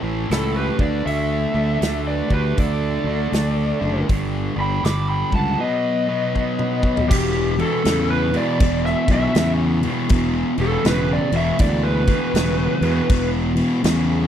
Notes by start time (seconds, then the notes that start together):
0.02 A1 A2 E3 A3
0.30 C#2 A2 E3 A3 E4 A4, snare, open hi-hat
0.57 G4 B4
0.78 D2 D3 A3 D4 D5, kick
0.83 B4
1.06 D2 D3 A3 D4 A4 E5, open hi-hat
1.54 D2 D3 A3 D4
1.82 D2 D3 A3 D4, snare, open hi-hat
2.07 B4 D5
2.29 D2 D3 A3 D4 G4, kick
2.33 B4
2.57 D2 D3 A3 D4 A4 D5, kick, open hi-hat
3.04 D2 D3 A3 D4
3.32 D2 D3 A3 D4, snare, open hi-hat
3.80 F#1 D3 A3 D4
4.08 G1 G2 D3 G3, kick, open hi-hat
4.55 G1 G2 D3 G3
4.60 G5 B5
4.83 G1 G2 D3 G3 B5 D6, snare, open hi-hat
5.09 G5 B5
5.31 C#2 G2 D3 G3 A5, kick
5.36 F#5
5.58 B2 F#3 B3 B4 D#5
6.08 B2 F#3 B3
6.35 B2 F#3 B3, kick
6.59 mid tom
6.82 B2 F#3 B3, kick
6.97 floor tom
7.09 E1 E2 B2 G4, kick, crash
7.59 E2 B2 A4, crash
7.84 E2 C#3, snare, crash
8.11 B4
8.33 E2 B2 D5, crash
8.60 E1 E2 B2, kick, crash
8.86 E5, snare
9.08 B1 E2 B2, kick, crash
9.12 E5
9.35 E2 C#3, snare, crash
9.83 E2 B2, crash
10.09 E1 E2 B2, kick, crash
10.58 E1 E2 B2 A4, crash
10.84 E1 E2 C#3 B4, snare, crash
11.13 D5
11.32 E1 E2 B2, crash
11.37 E5
11.59 D2 E2 B2 D5, kick, crash
11.83 B4
12.07 E2 B2, kick, crash
12.34 E1 E2 C#3, snare, crash
12.81 E2 B2, crash
13.09 E1 E2 B2, kick, crash
13.56 E2 B2, crash
13.83 E2 C#3, snare, crash